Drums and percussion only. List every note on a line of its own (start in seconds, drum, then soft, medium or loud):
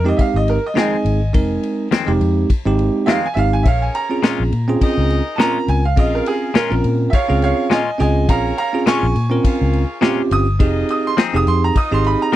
0.19 kick medium
0.19 ride medium
0.48 ride medium
0.77 snare medium
0.77 ride medium
1.06 ride medium
1.34 kick loud
1.34 ride medium
1.63 ride medium
1.92 snare loud
1.92 ride medium
2.21 ride medium
2.50 kick medium
2.50 ride medium
2.79 ride soft
3.08 snare loud
3.08 ride medium
3.37 ride medium
3.66 kick loud
3.66 ride medium
3.95 ride medium
4.23 snare loud
4.23 ride medium
4.52 ride medium
4.81 kick medium
4.81 ride medium
5.10 ride medium
5.39 snare medium
5.39 ride medium
5.68 ride medium
5.97 kick loud
5.97 ride medium
6.26 ride medium
6.55 snare loud
6.55 ride medium
6.84 ride medium
7.13 kick loud
7.13 ride medium
7.42 ride medium
7.71 snare loud
7.71 ride medium
8.00 ride medium
8.29 kick loud
8.29 ride medium
8.58 ride medium
8.87 snare loud
8.87 ride medium
9.16 ride medium
9.44 kick medium
9.44 ride medium
9.73 ride medium
10.02 snare loud
10.02 ride medium
10.31 ride medium
10.60 kick loud
10.60 ride medium
10.89 ride medium
11.18 snare loud
11.18 ride medium
11.47 ride medium
11.76 kick medium
11.76 ride medium
12.04 ride medium